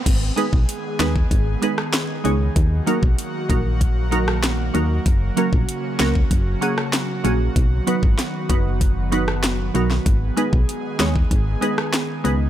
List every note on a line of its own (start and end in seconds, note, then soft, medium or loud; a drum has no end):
0.06 0.31 G#1 loud
0.06 5.02 D#3 medium
0.06 2.53 G#3 medium
0.06 2.54 B3 medium
0.06 2.53 G#4 loud
0.06 kick loud
0.06 closed hi-hat medium
0.06 crash loud
0.36 0.49 G#3 medium
0.36 0.50 B3 medium
0.36 0.50 D#4 medium
0.36 0.50 G#4 medium
0.36 0.50 B4 loud
0.36 closed hi-hat medium
0.53 0.65 B1 medium
0.53 kick loud
0.69 closed hi-hat medium
0.99 1.25 D#2 medium
0.99 1.12 G#3 medium
0.99 1.12 B3 medium
0.99 1.12 D#4 medium
0.99 1.12 G#4 medium
0.99 1.13 B4 loud
0.99 snare loud
0.99 closed hi-hat medium
1.16 kick loud
1.31 1.56 G#1 loud
1.31 kick loud
1.31 closed hi-hat medium
1.62 1.74 G#3 medium
1.62 1.75 B3 medium
1.62 1.75 D#4 medium
1.62 1.75 G#4 medium
1.62 1.75 B4 loud
1.62 closed hi-hat medium
1.78 cross-stick loud
1.93 snare loud
1.93 closed hi-hat medium
2.24 2.50 C#2 loud
2.24 2.37 G#3 medium
2.24 2.37 B3 medium
2.24 2.37 D#4 medium
2.24 2.37 G#4 medium
2.24 2.38 C#5 medium
2.24 closed hi-hat medium
2.56 2.81 D#2 loud
2.56 10.02 F#3 medium
2.56 7.52 A#3 medium
2.56 5.04 F#4 medium
2.56 kick loud
2.56 closed hi-hat medium
2.87 2.99 F#3 medium
2.87 3.00 A#3 medium
2.87 3.00 D#4 medium
2.87 3.00 F#4 medium
2.87 3.00 A#4 loud
2.87 closed hi-hat medium
3.03 3.15 B1 medium
3.03 kick loud
3.18 closed hi-hat medium
3.49 4.71 A#1 loud
3.49 3.62 F#3 medium
3.49 3.62 A#3 medium
3.49 3.62 D#4 medium
3.49 3.62 F#4 medium
3.49 3.63 A#4 medium
3.49 kick loud
3.49 closed hi-hat medium
3.81 kick medium
3.81 closed hi-hat medium
4.11 4.24 F#3 medium
4.11 4.25 A#3 medium
4.11 4.25 D#4 medium
4.11 4.25 F#4 medium
4.11 4.25 A#4 loud
4.11 closed hi-hat medium
4.28 cross-stick loud
4.43 snare loud
4.43 closed hi-hat medium
4.74 5.00 D#2 loud
4.74 4.87 F#3 medium
4.74 4.87 A#3 medium
4.74 4.87 D#4 medium
4.74 4.87 F#4 medium
4.74 4.88 A#4 medium
4.74 closed hi-hat medium
5.06 5.31 F#1 loud
5.06 7.54 C#3 medium
5.06 10.02 F#4 medium
5.06 kick loud
5.06 closed hi-hat medium
5.37 5.49 F#3 medium
5.37 5.50 A#3 medium
5.37 5.50 C#4 medium
5.37 5.50 F#4 medium
5.37 5.50 A#4 loud
5.37 closed hi-hat medium
5.53 5.65 A#1 loud
5.53 kick loud
5.69 closed hi-hat medium
5.99 6.25 C#2 medium
5.99 6.12 F#3 medium
5.99 6.12 A#3 medium
5.99 6.12 C#4 medium
5.99 6.12 F#4 medium
5.99 6.13 A#4 loud
5.99 snare loud
5.99 closed hi-hat medium
6.15 kick medium
6.31 6.56 F#1 loud
6.31 kick medium
6.31 closed hi-hat medium
6.61 6.74 F#3 medium
6.61 6.74 A#3 medium
6.61 6.75 C#4 medium
6.61 6.75 F#4 medium
6.61 6.75 G#4 loud
6.61 closed hi-hat medium
6.78 cross-stick loud
6.93 snare loud
6.93 closed hi-hat medium
7.24 7.49 A#1 loud
7.24 7.37 F#3 medium
7.24 7.37 A#3 medium
7.24 7.37 C#4 medium
7.24 7.37 F#4 medium
7.24 7.38 G#4 loud
7.24 closed hi-hat medium
7.56 7.81 B1 loud
7.56 10.04 D#3 medium
7.56 12.50 B3 medium
7.56 kick loud
7.56 closed hi-hat medium
7.87 8.00 F#3 medium
7.87 8.00 B3 medium
7.87 8.00 D#4 medium
7.87 8.00 F#4 medium
7.87 8.00 B4 loud
7.87 closed hi-hat medium
8.03 8.15 G#1 medium
8.03 kick loud
8.19 snare medium
8.19 closed hi-hat medium
8.49 9.71 F#1 loud
8.49 8.62 F#3 medium
8.49 8.62 B3 medium
8.49 8.62 D#4 medium
8.49 8.63 F#4 medium
8.49 8.63 B4 loud
8.49 kick loud
8.49 closed hi-hat medium
8.81 kick medium
8.81 closed hi-hat medium
9.12 9.25 F#3 medium
9.12 9.25 B3 medium
9.12 9.25 D#4 medium
9.12 9.25 F#4 medium
9.12 9.25 B4 loud
9.12 closed hi-hat medium
9.28 cross-stick loud
9.44 snare loud
9.44 closed hi-hat medium
9.74 10.00 B1 loud
9.74 9.87 F#3 medium
9.74 9.87 B3 medium
9.74 9.87 D#4 medium
9.74 9.88 F#4 medium
9.74 9.88 A#4 medium
9.74 closed hi-hat medium
9.91 snare medium
10.06 10.31 G#1 loud
10.06 12.50 D#3 medium
10.06 12.50 G#3 medium
10.06 12.50 G#4 loud
10.06 kick loud
10.06 closed hi-hat medium
10.37 10.49 G#3 medium
10.37 10.50 B3 medium
10.37 10.50 D#4 medium
10.37 10.50 G#4 medium
10.37 10.50 B4 loud
10.37 closed hi-hat medium
10.53 10.65 B1 loud
10.53 kick loud
10.69 closed hi-hat medium
10.99 11.25 D#2 loud
10.99 11.12 G#3 medium
10.99 11.12 B3 medium
10.99 11.12 D#4 medium
10.99 11.12 G#4 medium
10.99 11.13 C#5 loud
10.99 snare loud
10.99 closed hi-hat medium
11.16 kick loud
11.31 11.56 G#1 loud
11.31 kick medium
11.31 closed hi-hat medium
11.61 11.74 G#3 medium
11.61 11.74 B3 medium
11.61 11.75 D#4 medium
11.61 11.75 G#4 medium
11.61 11.75 B4 loud
11.61 closed hi-hat medium
11.78 cross-stick loud
11.93 snare loud
11.93 closed hi-hat medium
12.24 12.50 C#2 loud
12.24 12.37 G#3 medium
12.24 12.37 B3 medium
12.24 12.37 D#4 medium
12.24 12.37 G#4 medium
12.24 12.38 B4 loud
12.24 closed hi-hat medium